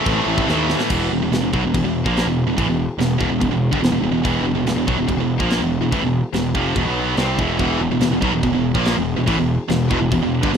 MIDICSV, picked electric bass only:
0, 0, Header, 1, 2, 480
1, 0, Start_track
1, 0, Tempo, 418994
1, 1028, Time_signature, 4, 2, 24, 8
1, 12109, End_track
2, 0, Start_track
2, 0, Title_t, "Picked electric bass"
2, 0, Program_c, 0, 34
2, 69, Note_on_c, 0, 33, 106
2, 217, Note_off_c, 0, 33, 0
2, 305, Note_on_c, 0, 33, 78
2, 454, Note_off_c, 0, 33, 0
2, 541, Note_on_c, 0, 39, 98
2, 839, Note_off_c, 0, 39, 0
2, 1032, Note_on_c, 0, 28, 94
2, 1253, Note_off_c, 0, 28, 0
2, 1272, Note_on_c, 0, 28, 74
2, 1381, Note_off_c, 0, 28, 0
2, 1395, Note_on_c, 0, 28, 75
2, 1503, Note_off_c, 0, 28, 0
2, 1511, Note_on_c, 0, 28, 78
2, 1621, Note_off_c, 0, 28, 0
2, 1639, Note_on_c, 0, 28, 79
2, 1745, Note_off_c, 0, 28, 0
2, 1760, Note_on_c, 0, 35, 91
2, 1866, Note_off_c, 0, 35, 0
2, 1879, Note_on_c, 0, 28, 82
2, 1985, Note_off_c, 0, 28, 0
2, 1995, Note_on_c, 0, 28, 88
2, 2103, Note_off_c, 0, 28, 0
2, 2115, Note_on_c, 0, 28, 76
2, 2335, Note_off_c, 0, 28, 0
2, 2354, Note_on_c, 0, 34, 96
2, 2575, Note_off_c, 0, 34, 0
2, 2581, Note_on_c, 0, 28, 90
2, 2808, Note_off_c, 0, 28, 0
2, 2815, Note_on_c, 0, 28, 81
2, 2933, Note_off_c, 0, 28, 0
2, 2948, Note_on_c, 0, 33, 96
2, 3060, Note_off_c, 0, 33, 0
2, 3065, Note_on_c, 0, 28, 85
2, 3290, Note_off_c, 0, 28, 0
2, 3412, Note_on_c, 0, 28, 80
2, 3643, Note_off_c, 0, 28, 0
2, 3673, Note_on_c, 0, 28, 98
2, 3760, Note_off_c, 0, 28, 0
2, 3767, Note_on_c, 0, 28, 81
2, 3889, Note_off_c, 0, 28, 0
2, 3912, Note_on_c, 0, 28, 87
2, 3993, Note_off_c, 0, 28, 0
2, 4000, Note_on_c, 0, 28, 80
2, 4237, Note_off_c, 0, 28, 0
2, 4260, Note_on_c, 0, 31, 102
2, 4353, Note_off_c, 0, 31, 0
2, 4360, Note_on_c, 0, 28, 83
2, 4475, Note_off_c, 0, 28, 0
2, 4482, Note_on_c, 0, 28, 91
2, 4582, Note_off_c, 0, 28, 0
2, 4589, Note_on_c, 0, 28, 81
2, 4702, Note_off_c, 0, 28, 0
2, 4709, Note_on_c, 0, 28, 84
2, 4839, Note_off_c, 0, 28, 0
2, 4864, Note_on_c, 0, 28, 92
2, 5060, Note_off_c, 0, 28, 0
2, 5067, Note_on_c, 0, 28, 84
2, 5187, Note_off_c, 0, 28, 0
2, 5194, Note_on_c, 0, 28, 78
2, 5304, Note_off_c, 0, 28, 0
2, 5311, Note_on_c, 0, 28, 78
2, 5423, Note_off_c, 0, 28, 0
2, 5430, Note_on_c, 0, 28, 82
2, 5559, Note_off_c, 0, 28, 0
2, 5582, Note_on_c, 0, 35, 100
2, 5672, Note_off_c, 0, 35, 0
2, 5678, Note_on_c, 0, 28, 75
2, 5804, Note_off_c, 0, 28, 0
2, 5825, Note_on_c, 0, 28, 84
2, 5931, Note_off_c, 0, 28, 0
2, 5938, Note_on_c, 0, 28, 69
2, 6166, Note_off_c, 0, 28, 0
2, 6191, Note_on_c, 0, 34, 103
2, 6407, Note_off_c, 0, 34, 0
2, 6414, Note_on_c, 0, 28, 87
2, 6636, Note_off_c, 0, 28, 0
2, 6643, Note_on_c, 0, 28, 75
2, 6766, Note_off_c, 0, 28, 0
2, 6781, Note_on_c, 0, 33, 90
2, 6896, Note_off_c, 0, 33, 0
2, 6902, Note_on_c, 0, 28, 79
2, 7127, Note_off_c, 0, 28, 0
2, 7260, Note_on_c, 0, 28, 79
2, 7486, Note_off_c, 0, 28, 0
2, 7500, Note_on_c, 0, 29, 94
2, 7726, Note_off_c, 0, 29, 0
2, 7744, Note_on_c, 0, 28, 97
2, 7842, Note_off_c, 0, 28, 0
2, 7849, Note_on_c, 0, 35, 96
2, 8191, Note_off_c, 0, 35, 0
2, 8216, Note_on_c, 0, 36, 96
2, 8443, Note_off_c, 0, 36, 0
2, 8452, Note_on_c, 0, 28, 95
2, 8681, Note_off_c, 0, 28, 0
2, 8703, Note_on_c, 0, 28, 93
2, 8918, Note_off_c, 0, 28, 0
2, 8924, Note_on_c, 0, 28, 81
2, 9039, Note_off_c, 0, 28, 0
2, 9046, Note_on_c, 0, 28, 71
2, 9159, Note_off_c, 0, 28, 0
2, 9166, Note_on_c, 0, 28, 73
2, 9286, Note_off_c, 0, 28, 0
2, 9291, Note_on_c, 0, 28, 76
2, 9405, Note_off_c, 0, 28, 0
2, 9412, Note_on_c, 0, 35, 98
2, 9529, Note_off_c, 0, 35, 0
2, 9544, Note_on_c, 0, 28, 88
2, 9648, Note_off_c, 0, 28, 0
2, 9655, Note_on_c, 0, 28, 85
2, 9771, Note_off_c, 0, 28, 0
2, 9790, Note_on_c, 0, 28, 69
2, 10010, Note_off_c, 0, 28, 0
2, 10021, Note_on_c, 0, 34, 106
2, 10246, Note_off_c, 0, 34, 0
2, 10272, Note_on_c, 0, 28, 89
2, 10491, Note_off_c, 0, 28, 0
2, 10502, Note_on_c, 0, 28, 82
2, 10615, Note_off_c, 0, 28, 0
2, 10626, Note_on_c, 0, 33, 95
2, 10730, Note_off_c, 0, 33, 0
2, 10737, Note_on_c, 0, 28, 84
2, 10963, Note_off_c, 0, 28, 0
2, 11105, Note_on_c, 0, 28, 77
2, 11328, Note_off_c, 0, 28, 0
2, 11350, Note_on_c, 0, 28, 94
2, 11453, Note_off_c, 0, 28, 0
2, 11460, Note_on_c, 0, 28, 82
2, 11573, Note_off_c, 0, 28, 0
2, 11590, Note_on_c, 0, 28, 87
2, 11699, Note_off_c, 0, 28, 0
2, 11716, Note_on_c, 0, 28, 74
2, 11934, Note_off_c, 0, 28, 0
2, 11950, Note_on_c, 0, 31, 109
2, 12059, Note_off_c, 0, 31, 0
2, 12066, Note_on_c, 0, 28, 82
2, 12109, Note_off_c, 0, 28, 0
2, 12109, End_track
0, 0, End_of_file